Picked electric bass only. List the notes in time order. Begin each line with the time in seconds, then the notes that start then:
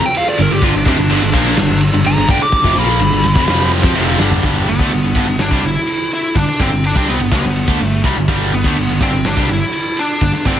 0.39 G1
0.50 G1
0.62 G1
0.74 G1
0.86 F1
0.98 G1
1.10 G1
1.21 G1
1.33 A#1
1.58 G1
1.69 G1
1.93 G1
2.05 G1
2.17 G1
2.28 G1
2.41 muted picked electric bass stroke
2.64 F1
2.76 A#1
3.00 G1
3.12 G1
3.24 G1
3.35 F1
3.48 F1
3.83 F2
3.95 F1
4.19 G1
4.43 G1
4.68 G1
4.79 D2
4.91 G1
5.04 G1
5.15 G1
5.28 G1
5.40 G1
5.51 C2
5.63 G1
6.35 G1
6.48 muted picked electric bass stroke
6.60 G1
6.71 G1
6.95 C2
7.19 G1
7.32 C#2
7.44 G1
7.68 D2
7.80 G1
8.04 C2
8.16 G1
8.28 G1
8.52 G1
8.64 D2
8.76 G1
8.89 G1
9.00 G1
9.12 G1
9.24 G1
9.37 C2
9.49 G1
10.21 G1
10.45 G1